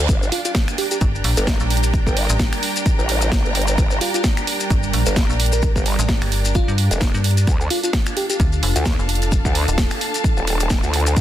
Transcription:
Already playing: D4 F5
0.09 G1 G3 G4 A#4 D5, kick, closed hi-hat, maracas
0.23 G5, maracas
0.32 F4, open hi-hat
0.45 F4, closed hi-hat, maracas
0.49 A#4
0.55 kick, snare, closed hi-hat, maracas
0.68 finger snap, closed hi-hat, maracas
0.78 G4, open hi-hat
0.84 A#5
0.91 G4, closed hi-hat, maracas
1.01 G1, kick, closed hi-hat, maracas
1.15 maracas
1.24 A#1, open hi-hat
1.37 G1, closed hi-hat, maracas
1.47 kick, snare, closed hi-hat, maracas
1.60 A#1, maracas
1.70 open hi-hat
1.77 closed hi-hat
1.83 closed hi-hat, maracas
1.94 kick, closed hi-hat, maracas
2.07 G1, kick, maracas
2.17 open hi-hat
2.30 A1, closed hi-hat, maracas
2.39 kick, snare, closed hi-hat, maracas
2.53 finger snap, open hi-hat, maracas
2.63 open hi-hat
2.76 closed hi-hat, maracas
2.86 kick, closed hi-hat, maracas
2.99 A1, maracas
3.09 open hi-hat
3.21 closed hi-hat, maracas
3.32 kick, snare, closed hi-hat, maracas
3.45 G1, maracas
3.55 open hi-hat
3.62 closed hi-hat
3.68 closed hi-hat, maracas
3.78 G1, kick, closed hi-hat, maracas
3.91 maracas
4.01 F4, open hi-hat
4.14 F4, closed hi-hat, maracas
4.24 kick, snare, closed hi-hat, maracas
4.37 finger snap, closed hi-hat, maracas
4.47 open hi-hat
4.60 closed hi-hat, maracas
4.70 G1, kick, closed hi-hat, maracas
4.83 maracas
4.93 A#1, open hi-hat
5.06 G1, closed hi-hat, maracas
5.16 kick, snare, closed hi-hat, maracas
5.30 A#1, maracas
5.40 open hi-hat
5.46 closed hi-hat
5.52 A#4, closed hi-hat, maracas
5.62 kick, closed hi-hat, maracas
5.76 G1, kick, maracas
5.86 open hi-hat
5.99 A1, closed hi-hat, maracas
6.09 kick, snare, closed hi-hat, maracas
6.21 G1, finger snap, open hi-hat, maracas
6.32 open hi-hat
6.45 closed hi-hat, maracas
6.55 F4, kick, closed hi-hat, maracas
6.68 G2, maracas
6.78 open hi-hat
6.91 F1, closed hi-hat, maracas
7.01 kick, snare, closed hi-hat, maracas
7.14 G2, maracas
7.24 open hi-hat
7.31 closed hi-hat
7.37 closed hi-hat, maracas
7.47 D2 D4 F4 A4, kick, closed hi-hat, maracas
7.60 A4, maracas
7.70 F4, open hi-hat
7.83 F4, closed hi-hat, maracas
7.93 kick, snare, closed hi-hat, maracas
8.04 F5, finger snap, closed hi-hat, maracas
8.17 G4, open hi-hat
8.30 G4 A5, closed hi-hat, maracas
8.40 D2, kick, closed hi-hat, maracas
8.53 maracas
8.63 F1, open hi-hat
8.76 D2, closed hi-hat, maracas
8.86 kick, snare, closed hi-hat, maracas
8.99 F1, maracas
9.09 open hi-hat
9.15 closed hi-hat
9.22 closed hi-hat, maracas
9.32 kick, closed hi-hat, maracas
9.45 D2, kick, maracas
9.55 open hi-hat
9.68 D#1, closed hi-hat, maracas
9.78 kick, snare, closed hi-hat, maracas
9.90 finger snap, open hi-hat, maracas
10.01 open hi-hat
10.14 closed hi-hat, maracas
10.24 kick, closed hi-hat, maracas
10.37 D#1, maracas
10.47 open hi-hat
10.60 closed hi-hat, maracas
10.70 kick, snare, closed hi-hat, maracas
10.83 D2, maracas
10.94 open hi-hat
11.00 closed hi-hat
11.06 closed hi-hat, maracas
11.17 D2, kick, closed hi-hat, maracas

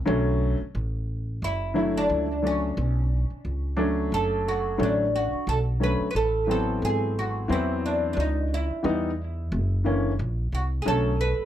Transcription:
Already playing: C#4
0.05 B1 D3 F#3 A3 C#4
0.60 muted upright bass stroke
0.75 A1
1.42 F#1 E4
1.74 D3 F#3 A3 E4
1.97 D4
2.09 C#2
2.42 D3 F#3 A3 D4
2.47 C#4
2.77 B1
3.30 muted upright bass stroke
3.45 C#2
3.77 F#3 A3 C#4 D4
4.12 F#1 A4
4.48 F#4
4.78 A1 D3 F#3 A3 C#4
4.83 D4
5.16 F#4
5.33 muted upright bass stroke
5.47 B1 A4
5.80 D3 F#3 A3 C#4 B4
6.01 muted upright bass stroke
6.11 B4
6.15 A1 A4
6.47 E3 F#3 B3 C4
6.51 A4
6.82 G#1 G#4
7.19 F#4
7.48 E2 E3 F#3 B3 C4
7.52 E4
7.86 D4
8.13 C#2 D4
8.20 D#4
8.54 E4
8.70 muted upright bass stroke
8.83 E2 E3 G3 B3 D#4
9.52 F#1
9.84 D3 E3 A#3 C#4
10.19 A#1
10.52 C2 F#4
10.82 B1 D3 F#3 G#4
10.86 A3 C#4 A4
11.21 B4
11.39 muted upright bass stroke

